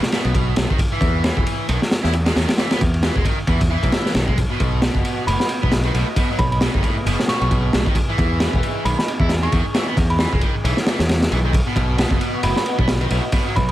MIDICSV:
0, 0, Header, 1, 6, 480
1, 0, Start_track
1, 0, Tempo, 447761
1, 850, Time_signature, 4, 2, 24, 8
1, 14705, End_track
2, 0, Start_track
2, 0, Title_t, "Synth bell"
2, 0, Program_c, 0, 98
2, 5650, Note_on_c, 0, 83, 86
2, 5738, Note_off_c, 0, 83, 0
2, 5783, Note_on_c, 0, 83, 72
2, 5851, Note_off_c, 0, 83, 0
2, 6845, Note_on_c, 0, 83, 88
2, 6936, Note_off_c, 0, 83, 0
2, 6987, Note_on_c, 0, 83, 75
2, 7053, Note_off_c, 0, 83, 0
2, 7811, Note_on_c, 0, 85, 89
2, 7899, Note_off_c, 0, 85, 0
2, 7950, Note_on_c, 0, 85, 73
2, 8014, Note_off_c, 0, 85, 0
2, 9487, Note_on_c, 0, 83, 85
2, 9577, Note_off_c, 0, 83, 0
2, 9629, Note_on_c, 0, 83, 74
2, 9693, Note_off_c, 0, 83, 0
2, 10108, Note_on_c, 0, 85, 91
2, 10275, Note_off_c, 0, 85, 0
2, 10828, Note_on_c, 0, 83, 87
2, 10893, Note_off_c, 0, 83, 0
2, 10931, Note_on_c, 0, 83, 74
2, 11019, Note_off_c, 0, 83, 0
2, 13330, Note_on_c, 0, 83, 86
2, 13418, Note_off_c, 0, 83, 0
2, 13470, Note_on_c, 0, 83, 75
2, 13534, Note_off_c, 0, 83, 0
2, 14534, Note_on_c, 0, 83, 92
2, 14620, Note_off_c, 0, 83, 0
2, 14671, Note_on_c, 0, 83, 76
2, 14705, Note_off_c, 0, 83, 0
2, 14705, End_track
3, 0, Start_track
3, 0, Title_t, "Analog synth pad"
3, 0, Program_c, 1, 89
3, 4686, Note_on_c, 1, 66, 73
3, 4686, Note_on_c, 1, 75, 89
3, 4688, Note_on_c, 1, 59, 80
3, 6588, Note_off_c, 1, 66, 0
3, 6610, Note_on_c, 1, 68, 73
3, 8489, Note_off_c, 1, 75, 0
3, 8490, Note_off_c, 1, 59, 0
3, 8531, Note_on_c, 1, 63, 75
3, 12327, Note_off_c, 1, 68, 0
3, 12332, Note_off_c, 1, 63, 0
3, 12371, Note_on_c, 1, 59, 79
3, 12371, Note_on_c, 1, 66, 75
3, 12371, Note_on_c, 1, 75, 92
3, 14271, Note_off_c, 1, 66, 0
3, 14290, Note_on_c, 1, 68, 76
3, 14705, Note_off_c, 1, 59, 0
3, 14705, Note_off_c, 1, 68, 0
3, 14705, Note_off_c, 1, 75, 0
3, 14705, End_track
4, 0, Start_track
4, 0, Title_t, "Distorted electric guitar"
4, 0, Program_c, 2, 30
4, 127, Note_on_c, 2, 47, 71
4, 598, Note_off_c, 2, 47, 0
4, 608, Note_on_c, 2, 45, 78
4, 740, Note_off_c, 2, 45, 0
4, 747, Note_on_c, 2, 51, 73
4, 844, Note_off_c, 2, 51, 0
4, 988, Note_on_c, 2, 52, 70
4, 1316, Note_off_c, 2, 52, 0
4, 1328, Note_on_c, 2, 52, 82
4, 1453, Note_off_c, 2, 52, 0
4, 1466, Note_on_c, 2, 52, 72
4, 1799, Note_off_c, 2, 52, 0
4, 1811, Note_on_c, 2, 51, 81
4, 1932, Note_off_c, 2, 51, 0
4, 2186, Note_on_c, 2, 64, 72
4, 2284, Note_off_c, 2, 64, 0
4, 2427, Note_on_c, 2, 56, 73
4, 2524, Note_off_c, 2, 56, 0
4, 2528, Note_on_c, 2, 51, 76
4, 2660, Note_off_c, 2, 51, 0
4, 2768, Note_on_c, 2, 52, 98
4, 2900, Note_off_c, 2, 52, 0
4, 2907, Note_on_c, 2, 59, 71
4, 2997, Note_off_c, 2, 59, 0
4, 3248, Note_on_c, 2, 52, 83
4, 3371, Note_off_c, 2, 52, 0
4, 3384, Note_on_c, 2, 56, 72
4, 3483, Note_off_c, 2, 56, 0
4, 3486, Note_on_c, 2, 51, 76
4, 3619, Note_off_c, 2, 51, 0
4, 3726, Note_on_c, 2, 52, 96
4, 3859, Note_off_c, 2, 52, 0
4, 3967, Note_on_c, 2, 52, 76
4, 4438, Note_off_c, 2, 52, 0
4, 4447, Note_on_c, 2, 51, 76
4, 4579, Note_off_c, 2, 51, 0
4, 4585, Note_on_c, 2, 56, 74
4, 4683, Note_off_c, 2, 56, 0
4, 4825, Note_on_c, 2, 47, 71
4, 5154, Note_off_c, 2, 47, 0
4, 5167, Note_on_c, 2, 47, 80
4, 5292, Note_off_c, 2, 47, 0
4, 5305, Note_on_c, 2, 47, 72
4, 5638, Note_off_c, 2, 47, 0
4, 5648, Note_on_c, 2, 45, 80
4, 5771, Note_off_c, 2, 45, 0
4, 6026, Note_on_c, 2, 59, 75
4, 6124, Note_off_c, 2, 59, 0
4, 6265, Note_on_c, 2, 51, 70
4, 6356, Note_off_c, 2, 51, 0
4, 6368, Note_on_c, 2, 45, 76
4, 6500, Note_off_c, 2, 45, 0
4, 6608, Note_on_c, 2, 47, 100
4, 6740, Note_off_c, 2, 47, 0
4, 6748, Note_on_c, 2, 54, 72
4, 6838, Note_off_c, 2, 54, 0
4, 7090, Note_on_c, 2, 47, 80
4, 7212, Note_off_c, 2, 47, 0
4, 7227, Note_on_c, 2, 51, 74
4, 7324, Note_off_c, 2, 51, 0
4, 7330, Note_on_c, 2, 45, 78
4, 7461, Note_off_c, 2, 45, 0
4, 7570, Note_on_c, 2, 47, 101
4, 7701, Note_off_c, 2, 47, 0
4, 7809, Note_on_c, 2, 47, 75
4, 8279, Note_off_c, 2, 47, 0
4, 8290, Note_on_c, 2, 45, 76
4, 8421, Note_off_c, 2, 45, 0
4, 8428, Note_on_c, 2, 51, 76
4, 8524, Note_off_c, 2, 51, 0
4, 8669, Note_on_c, 2, 52, 74
4, 8997, Note_off_c, 2, 52, 0
4, 9010, Note_on_c, 2, 52, 80
4, 9134, Note_off_c, 2, 52, 0
4, 9149, Note_on_c, 2, 52, 72
4, 9480, Note_off_c, 2, 52, 0
4, 9490, Note_on_c, 2, 51, 81
4, 9612, Note_off_c, 2, 51, 0
4, 9867, Note_on_c, 2, 64, 71
4, 9964, Note_off_c, 2, 64, 0
4, 10108, Note_on_c, 2, 56, 72
4, 10198, Note_off_c, 2, 56, 0
4, 10209, Note_on_c, 2, 51, 79
4, 10341, Note_off_c, 2, 51, 0
4, 10450, Note_on_c, 2, 52, 97
4, 10581, Note_off_c, 2, 52, 0
4, 10588, Note_on_c, 2, 59, 70
4, 10678, Note_off_c, 2, 59, 0
4, 10929, Note_on_c, 2, 52, 79
4, 11051, Note_off_c, 2, 52, 0
4, 11066, Note_on_c, 2, 56, 73
4, 11164, Note_off_c, 2, 56, 0
4, 11168, Note_on_c, 2, 51, 76
4, 11300, Note_off_c, 2, 51, 0
4, 11409, Note_on_c, 2, 52, 101
4, 11540, Note_off_c, 2, 52, 0
4, 11647, Note_on_c, 2, 52, 76
4, 11773, Note_off_c, 2, 52, 0
4, 12127, Note_on_c, 2, 52, 97
4, 12201, Note_off_c, 2, 52, 0
4, 12266, Note_on_c, 2, 51, 76
4, 12364, Note_off_c, 2, 51, 0
4, 12506, Note_on_c, 2, 47, 72
4, 12835, Note_off_c, 2, 47, 0
4, 12848, Note_on_c, 2, 47, 83
4, 12973, Note_off_c, 2, 47, 0
4, 12987, Note_on_c, 2, 47, 72
4, 13319, Note_off_c, 2, 47, 0
4, 13328, Note_on_c, 2, 45, 81
4, 13451, Note_off_c, 2, 45, 0
4, 13707, Note_on_c, 2, 59, 73
4, 13804, Note_off_c, 2, 59, 0
4, 13947, Note_on_c, 2, 51, 76
4, 14037, Note_off_c, 2, 51, 0
4, 14048, Note_on_c, 2, 45, 76
4, 14180, Note_off_c, 2, 45, 0
4, 14287, Note_on_c, 2, 47, 96
4, 14420, Note_off_c, 2, 47, 0
4, 14425, Note_on_c, 2, 54, 69
4, 14516, Note_off_c, 2, 54, 0
4, 14705, End_track
5, 0, Start_track
5, 0, Title_t, "Picked electric bass"
5, 0, Program_c, 3, 34
5, 266, Note_on_c, 3, 35, 76
5, 553, Note_off_c, 3, 35, 0
5, 610, Note_on_c, 3, 35, 87
5, 700, Note_off_c, 3, 35, 0
5, 1081, Note_on_c, 3, 40, 95
5, 1388, Note_off_c, 3, 40, 0
5, 1467, Note_on_c, 3, 28, 91
5, 1535, Note_off_c, 3, 28, 0
5, 1811, Note_on_c, 3, 35, 91
5, 1901, Note_off_c, 3, 35, 0
5, 2189, Note_on_c, 3, 40, 75
5, 2474, Note_off_c, 3, 40, 0
5, 2531, Note_on_c, 3, 40, 83
5, 2621, Note_off_c, 3, 40, 0
5, 3015, Note_on_c, 3, 40, 100
5, 3315, Note_off_c, 3, 40, 0
5, 3385, Note_on_c, 3, 28, 87
5, 3453, Note_off_c, 3, 28, 0
5, 3723, Note_on_c, 3, 40, 92
5, 4029, Note_off_c, 3, 40, 0
5, 4104, Note_on_c, 3, 35, 88
5, 4173, Note_off_c, 3, 35, 0
5, 4448, Note_on_c, 3, 35, 84
5, 4752, Note_off_c, 3, 35, 0
5, 4933, Note_on_c, 3, 35, 95
5, 5234, Note_off_c, 3, 35, 0
5, 5304, Note_on_c, 3, 30, 86
5, 5373, Note_off_c, 3, 30, 0
5, 5650, Note_on_c, 3, 30, 93
5, 5740, Note_off_c, 3, 30, 0
5, 6037, Note_on_c, 3, 35, 78
5, 6318, Note_off_c, 3, 35, 0
5, 6370, Note_on_c, 3, 35, 86
5, 6461, Note_off_c, 3, 35, 0
5, 6848, Note_on_c, 3, 35, 96
5, 7151, Note_off_c, 3, 35, 0
5, 7229, Note_on_c, 3, 30, 90
5, 7295, Note_off_c, 3, 30, 0
5, 7570, Note_on_c, 3, 30, 94
5, 7660, Note_off_c, 3, 30, 0
5, 7947, Note_on_c, 3, 35, 79
5, 8234, Note_off_c, 3, 35, 0
5, 8292, Note_on_c, 3, 35, 89
5, 8382, Note_off_c, 3, 35, 0
5, 8771, Note_on_c, 3, 40, 97
5, 9073, Note_off_c, 3, 40, 0
5, 9149, Note_on_c, 3, 28, 91
5, 9216, Note_off_c, 3, 28, 0
5, 9488, Note_on_c, 3, 35, 95
5, 9580, Note_off_c, 3, 35, 0
5, 9857, Note_on_c, 3, 40, 76
5, 10148, Note_off_c, 3, 40, 0
5, 10210, Note_on_c, 3, 40, 87
5, 10300, Note_off_c, 3, 40, 0
5, 10687, Note_on_c, 3, 40, 94
5, 10991, Note_off_c, 3, 40, 0
5, 11071, Note_on_c, 3, 28, 90
5, 11136, Note_off_c, 3, 28, 0
5, 11408, Note_on_c, 3, 35, 93
5, 11500, Note_off_c, 3, 35, 0
5, 11786, Note_on_c, 3, 40, 79
5, 12073, Note_off_c, 3, 40, 0
5, 12130, Note_on_c, 3, 35, 84
5, 12432, Note_off_c, 3, 35, 0
5, 12606, Note_on_c, 3, 35, 96
5, 12910, Note_off_c, 3, 35, 0
5, 12978, Note_on_c, 3, 30, 91
5, 13050, Note_off_c, 3, 30, 0
5, 13329, Note_on_c, 3, 30, 93
5, 13420, Note_off_c, 3, 30, 0
5, 13706, Note_on_c, 3, 35, 78
5, 13993, Note_off_c, 3, 35, 0
5, 14050, Note_on_c, 3, 35, 89
5, 14141, Note_off_c, 3, 35, 0
5, 14541, Note_on_c, 3, 35, 97
5, 14705, Note_off_c, 3, 35, 0
5, 14705, End_track
6, 0, Start_track
6, 0, Title_t, "Drums"
6, 27, Note_on_c, 9, 38, 50
6, 131, Note_on_c, 9, 51, 60
6, 134, Note_off_c, 9, 38, 0
6, 135, Note_on_c, 9, 38, 53
6, 238, Note_off_c, 9, 51, 0
6, 242, Note_off_c, 9, 38, 0
6, 262, Note_on_c, 9, 51, 43
6, 369, Note_off_c, 9, 51, 0
6, 369, Note_on_c, 9, 36, 78
6, 371, Note_on_c, 9, 51, 59
6, 476, Note_off_c, 9, 36, 0
6, 478, Note_off_c, 9, 51, 0
6, 603, Note_on_c, 9, 51, 75
6, 610, Note_on_c, 9, 38, 92
6, 710, Note_off_c, 9, 51, 0
6, 717, Note_off_c, 9, 38, 0
6, 755, Note_on_c, 9, 36, 79
6, 841, Note_off_c, 9, 36, 0
6, 841, Note_on_c, 9, 36, 118
6, 849, Note_on_c, 9, 51, 81
6, 948, Note_off_c, 9, 36, 0
6, 956, Note_off_c, 9, 51, 0
6, 1081, Note_on_c, 9, 36, 99
6, 1090, Note_on_c, 9, 51, 66
6, 1188, Note_off_c, 9, 36, 0
6, 1197, Note_off_c, 9, 51, 0
6, 1329, Note_on_c, 9, 51, 75
6, 1332, Note_on_c, 9, 38, 100
6, 1437, Note_off_c, 9, 51, 0
6, 1440, Note_off_c, 9, 38, 0
6, 1467, Note_on_c, 9, 36, 101
6, 1571, Note_on_c, 9, 51, 72
6, 1574, Note_off_c, 9, 36, 0
6, 1678, Note_off_c, 9, 51, 0
6, 1808, Note_on_c, 9, 51, 83
6, 1915, Note_off_c, 9, 51, 0
6, 1952, Note_on_c, 9, 38, 51
6, 2051, Note_off_c, 9, 38, 0
6, 2051, Note_on_c, 9, 38, 95
6, 2054, Note_on_c, 9, 51, 68
6, 2158, Note_off_c, 9, 38, 0
6, 2161, Note_off_c, 9, 51, 0
6, 2183, Note_on_c, 9, 38, 47
6, 2287, Note_on_c, 9, 51, 64
6, 2290, Note_off_c, 9, 38, 0
6, 2394, Note_off_c, 9, 51, 0
6, 2425, Note_on_c, 9, 38, 114
6, 2425, Note_on_c, 9, 51, 72
6, 2532, Note_off_c, 9, 38, 0
6, 2532, Note_off_c, 9, 51, 0
6, 2535, Note_on_c, 9, 38, 106
6, 2536, Note_on_c, 9, 51, 74
6, 2642, Note_off_c, 9, 38, 0
6, 2644, Note_off_c, 9, 51, 0
6, 2665, Note_on_c, 9, 51, 75
6, 2668, Note_on_c, 9, 38, 91
6, 2765, Note_off_c, 9, 38, 0
6, 2765, Note_on_c, 9, 38, 108
6, 2766, Note_off_c, 9, 51, 0
6, 2766, Note_on_c, 9, 51, 72
6, 2873, Note_off_c, 9, 38, 0
6, 2873, Note_off_c, 9, 51, 0
6, 2902, Note_on_c, 9, 51, 72
6, 2907, Note_on_c, 9, 38, 96
6, 3010, Note_off_c, 9, 51, 0
6, 3014, Note_on_c, 9, 51, 69
6, 3015, Note_off_c, 9, 38, 0
6, 3015, Note_on_c, 9, 36, 91
6, 3122, Note_off_c, 9, 36, 0
6, 3122, Note_off_c, 9, 51, 0
6, 3152, Note_on_c, 9, 51, 45
6, 3246, Note_on_c, 9, 38, 114
6, 3248, Note_off_c, 9, 51, 0
6, 3248, Note_on_c, 9, 51, 89
6, 3353, Note_off_c, 9, 38, 0
6, 3355, Note_off_c, 9, 51, 0
6, 3384, Note_on_c, 9, 36, 86
6, 3482, Note_off_c, 9, 36, 0
6, 3482, Note_on_c, 9, 36, 95
6, 3488, Note_on_c, 9, 51, 76
6, 3589, Note_off_c, 9, 36, 0
6, 3596, Note_off_c, 9, 51, 0
6, 3722, Note_on_c, 9, 51, 65
6, 3723, Note_on_c, 9, 36, 78
6, 3829, Note_off_c, 9, 51, 0
6, 3830, Note_off_c, 9, 36, 0
6, 3864, Note_on_c, 9, 36, 87
6, 3868, Note_on_c, 9, 51, 74
6, 3972, Note_off_c, 9, 36, 0
6, 3975, Note_off_c, 9, 51, 0
6, 4104, Note_on_c, 9, 36, 78
6, 4109, Note_on_c, 9, 51, 66
6, 4205, Note_off_c, 9, 51, 0
6, 4205, Note_on_c, 9, 38, 95
6, 4205, Note_on_c, 9, 51, 76
6, 4211, Note_off_c, 9, 36, 0
6, 4312, Note_off_c, 9, 51, 0
6, 4313, Note_off_c, 9, 38, 0
6, 4350, Note_on_c, 9, 38, 56
6, 4445, Note_on_c, 9, 51, 80
6, 4448, Note_off_c, 9, 38, 0
6, 4448, Note_on_c, 9, 38, 98
6, 4552, Note_off_c, 9, 51, 0
6, 4555, Note_off_c, 9, 38, 0
6, 4586, Note_on_c, 9, 36, 83
6, 4693, Note_off_c, 9, 36, 0
6, 4693, Note_on_c, 9, 36, 106
6, 4693, Note_on_c, 9, 51, 83
6, 4800, Note_off_c, 9, 51, 0
6, 4801, Note_off_c, 9, 36, 0
6, 4932, Note_on_c, 9, 36, 85
6, 4932, Note_on_c, 9, 51, 69
6, 5039, Note_off_c, 9, 51, 0
6, 5040, Note_off_c, 9, 36, 0
6, 5167, Note_on_c, 9, 38, 110
6, 5169, Note_on_c, 9, 51, 80
6, 5274, Note_off_c, 9, 38, 0
6, 5276, Note_off_c, 9, 51, 0
6, 5304, Note_on_c, 9, 36, 86
6, 5411, Note_off_c, 9, 36, 0
6, 5411, Note_on_c, 9, 51, 70
6, 5518, Note_off_c, 9, 51, 0
6, 5657, Note_on_c, 9, 51, 84
6, 5764, Note_off_c, 9, 51, 0
6, 5788, Note_on_c, 9, 38, 55
6, 5883, Note_on_c, 9, 51, 65
6, 5895, Note_off_c, 9, 38, 0
6, 5991, Note_off_c, 9, 51, 0
6, 6037, Note_on_c, 9, 36, 88
6, 6127, Note_on_c, 9, 38, 106
6, 6130, Note_on_c, 9, 51, 85
6, 6145, Note_off_c, 9, 36, 0
6, 6234, Note_off_c, 9, 38, 0
6, 6237, Note_off_c, 9, 51, 0
6, 6254, Note_on_c, 9, 51, 44
6, 6361, Note_off_c, 9, 51, 0
6, 6373, Note_on_c, 9, 51, 72
6, 6480, Note_off_c, 9, 51, 0
6, 6608, Note_on_c, 9, 36, 106
6, 6608, Note_on_c, 9, 51, 89
6, 6715, Note_off_c, 9, 36, 0
6, 6716, Note_off_c, 9, 51, 0
6, 6848, Note_on_c, 9, 36, 100
6, 6850, Note_on_c, 9, 51, 67
6, 6955, Note_off_c, 9, 36, 0
6, 6957, Note_off_c, 9, 51, 0
6, 6991, Note_on_c, 9, 51, 43
6, 7085, Note_on_c, 9, 38, 118
6, 7092, Note_off_c, 9, 51, 0
6, 7092, Note_on_c, 9, 51, 91
6, 7192, Note_off_c, 9, 38, 0
6, 7199, Note_off_c, 9, 51, 0
6, 7228, Note_on_c, 9, 36, 98
6, 7321, Note_off_c, 9, 36, 0
6, 7321, Note_on_c, 9, 36, 91
6, 7328, Note_on_c, 9, 51, 67
6, 7429, Note_off_c, 9, 36, 0
6, 7435, Note_off_c, 9, 51, 0
6, 7574, Note_on_c, 9, 51, 94
6, 7681, Note_off_c, 9, 51, 0
6, 7711, Note_on_c, 9, 38, 49
6, 7802, Note_off_c, 9, 38, 0
6, 7802, Note_on_c, 9, 38, 52
6, 7813, Note_on_c, 9, 51, 59
6, 7910, Note_off_c, 9, 38, 0
6, 7920, Note_off_c, 9, 51, 0
6, 7948, Note_on_c, 9, 51, 41
6, 8051, Note_on_c, 9, 36, 87
6, 8053, Note_off_c, 9, 51, 0
6, 8053, Note_on_c, 9, 51, 55
6, 8158, Note_off_c, 9, 36, 0
6, 8160, Note_off_c, 9, 51, 0
6, 8289, Note_on_c, 9, 38, 111
6, 8300, Note_on_c, 9, 51, 75
6, 8396, Note_off_c, 9, 38, 0
6, 8407, Note_off_c, 9, 51, 0
6, 8430, Note_on_c, 9, 36, 89
6, 8524, Note_off_c, 9, 36, 0
6, 8524, Note_on_c, 9, 36, 112
6, 8527, Note_on_c, 9, 51, 80
6, 8632, Note_off_c, 9, 36, 0
6, 8634, Note_off_c, 9, 51, 0
6, 8771, Note_on_c, 9, 36, 92
6, 8776, Note_on_c, 9, 51, 73
6, 8878, Note_off_c, 9, 36, 0
6, 8883, Note_off_c, 9, 51, 0
6, 9007, Note_on_c, 9, 38, 104
6, 9007, Note_on_c, 9, 51, 77
6, 9114, Note_off_c, 9, 38, 0
6, 9114, Note_off_c, 9, 51, 0
6, 9149, Note_on_c, 9, 36, 86
6, 9251, Note_on_c, 9, 51, 68
6, 9256, Note_off_c, 9, 36, 0
6, 9358, Note_off_c, 9, 51, 0
6, 9492, Note_on_c, 9, 51, 78
6, 9599, Note_off_c, 9, 51, 0
6, 9633, Note_on_c, 9, 38, 55
6, 9735, Note_on_c, 9, 51, 62
6, 9740, Note_off_c, 9, 38, 0
6, 9842, Note_off_c, 9, 51, 0
6, 9857, Note_on_c, 9, 36, 87
6, 9962, Note_on_c, 9, 38, 105
6, 9965, Note_off_c, 9, 36, 0
6, 9966, Note_on_c, 9, 51, 81
6, 10069, Note_off_c, 9, 38, 0
6, 10073, Note_off_c, 9, 51, 0
6, 10110, Note_on_c, 9, 51, 44
6, 10208, Note_off_c, 9, 51, 0
6, 10208, Note_on_c, 9, 51, 73
6, 10210, Note_on_c, 9, 36, 94
6, 10315, Note_off_c, 9, 51, 0
6, 10317, Note_off_c, 9, 36, 0
6, 10448, Note_on_c, 9, 38, 102
6, 10448, Note_on_c, 9, 51, 72
6, 10555, Note_off_c, 9, 38, 0
6, 10555, Note_off_c, 9, 51, 0
6, 10688, Note_on_c, 9, 36, 100
6, 10694, Note_on_c, 9, 51, 74
6, 10795, Note_off_c, 9, 36, 0
6, 10801, Note_off_c, 9, 51, 0
6, 10828, Note_on_c, 9, 51, 44
6, 10922, Note_on_c, 9, 38, 109
6, 10935, Note_off_c, 9, 51, 0
6, 10937, Note_on_c, 9, 51, 80
6, 11029, Note_off_c, 9, 38, 0
6, 11044, Note_off_c, 9, 51, 0
6, 11071, Note_on_c, 9, 36, 88
6, 11163, Note_on_c, 9, 51, 66
6, 11175, Note_off_c, 9, 36, 0
6, 11175, Note_on_c, 9, 36, 103
6, 11270, Note_off_c, 9, 51, 0
6, 11282, Note_off_c, 9, 36, 0
6, 11416, Note_on_c, 9, 51, 92
6, 11523, Note_off_c, 9, 51, 0
6, 11544, Note_on_c, 9, 38, 51
6, 11647, Note_off_c, 9, 38, 0
6, 11647, Note_on_c, 9, 38, 106
6, 11647, Note_on_c, 9, 51, 73
6, 11754, Note_off_c, 9, 38, 0
6, 11754, Note_off_c, 9, 51, 0
6, 11784, Note_on_c, 9, 38, 95
6, 11792, Note_on_c, 9, 51, 70
6, 11890, Note_off_c, 9, 51, 0
6, 11890, Note_on_c, 9, 51, 76
6, 11891, Note_off_c, 9, 38, 0
6, 11897, Note_on_c, 9, 38, 110
6, 11997, Note_off_c, 9, 51, 0
6, 12004, Note_off_c, 9, 38, 0
6, 12032, Note_on_c, 9, 38, 102
6, 12033, Note_on_c, 9, 51, 72
6, 12132, Note_off_c, 9, 51, 0
6, 12132, Note_on_c, 9, 51, 65
6, 12139, Note_off_c, 9, 38, 0
6, 12239, Note_off_c, 9, 51, 0
6, 12364, Note_on_c, 9, 36, 105
6, 12373, Note_on_c, 9, 51, 93
6, 12471, Note_off_c, 9, 36, 0
6, 12481, Note_off_c, 9, 51, 0
6, 12606, Note_on_c, 9, 36, 91
6, 12611, Note_on_c, 9, 51, 73
6, 12713, Note_off_c, 9, 36, 0
6, 12719, Note_off_c, 9, 51, 0
6, 12846, Note_on_c, 9, 51, 77
6, 12855, Note_on_c, 9, 38, 116
6, 12954, Note_off_c, 9, 51, 0
6, 12962, Note_off_c, 9, 38, 0
6, 12978, Note_on_c, 9, 36, 93
6, 13085, Note_off_c, 9, 36, 0
6, 13088, Note_on_c, 9, 51, 64
6, 13195, Note_off_c, 9, 51, 0
6, 13326, Note_on_c, 9, 51, 93
6, 13433, Note_off_c, 9, 51, 0
6, 13467, Note_on_c, 9, 38, 53
6, 13568, Note_on_c, 9, 51, 64
6, 13574, Note_off_c, 9, 38, 0
6, 13675, Note_off_c, 9, 51, 0
6, 13706, Note_on_c, 9, 36, 95
6, 13804, Note_on_c, 9, 38, 115
6, 13811, Note_on_c, 9, 51, 87
6, 13814, Note_off_c, 9, 36, 0
6, 13911, Note_off_c, 9, 38, 0
6, 13918, Note_off_c, 9, 51, 0
6, 13946, Note_on_c, 9, 51, 44
6, 14048, Note_off_c, 9, 51, 0
6, 14048, Note_on_c, 9, 51, 73
6, 14155, Note_off_c, 9, 51, 0
6, 14282, Note_on_c, 9, 51, 94
6, 14285, Note_on_c, 9, 36, 111
6, 14389, Note_off_c, 9, 51, 0
6, 14392, Note_off_c, 9, 36, 0
6, 14540, Note_on_c, 9, 51, 64
6, 14541, Note_on_c, 9, 36, 99
6, 14647, Note_off_c, 9, 51, 0
6, 14649, Note_off_c, 9, 36, 0
6, 14672, Note_on_c, 9, 51, 47
6, 14705, Note_off_c, 9, 51, 0
6, 14705, End_track
0, 0, End_of_file